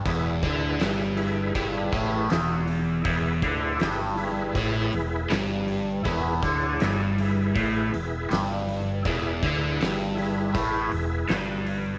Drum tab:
HH |oooooooo|oooooooo|oooooooo|oooooooo|
SD |--o---o-|--o---o-|--o---o-|--o---o-|
BD |oo--oo--|oo--o---|oo--o---|oo--o---|